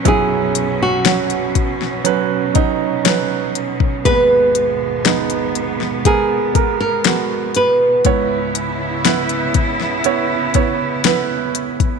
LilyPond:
<<
  \new Staff \with { instrumentName = "Nylon-string guitar" } { \time 4/4 \key b \major \tempo 4 = 60 gis'8. fis'2 r4 r16 | b'2 gis'8. ais'8. b'8~ | b'2. r4 | }
  \new Staff \with { instrumentName = "Grand piano" } { \time 4/4 \key b \major <fis cis' e'>4 <fis cis' fis'>4 <fis cis' b'>8 <fis cis' dis'>8 <fis cis' b'>4 | <gis b b'>4 <gis b dis'>4 <gis b ais'>8 <gis b ais'>8 <gis b fis'>4 | <b e' cis''>4 <b e' b'>4 <b e' cis''>8 <b e' cis''>8 <b e' b'>4 | }
  \new Staff \with { instrumentName = "Grand piano" } { \clef bass \time 4/4 \key b \major <b,, fis,>1 | <gis,, dis,>1 | <cis, gis,>1 | }
  \new Staff \with { instrumentName = "String section" } { \time 4/4 \key b \major << { <fis cis'>1 | <gis b>1 | <b e'>1 | } \\ { b,1~ | b,1 | cis1 | } >> }
  \new DrumStaff \with { instrumentName = "Drums" } \drummode { \time 4/4 <hh bd>8 hh8 <hh sn>16 hh16 <hh bd>16 sn16 hh8 <hh bd>8 <hh sn>8 hh16 bd16 | <hh bd>8 hh8 <hh sn>16 hh16 hh16 sn16 <hh bd>8 <hh bd>8 <hh sn>8 hh8 | <hh bd>8 hh8 <hh sn>16 hh16 <hh bd>16 sn16 hh8 <hh bd>8 <hh sn>8 hh16 <hh bd>16 | }
>>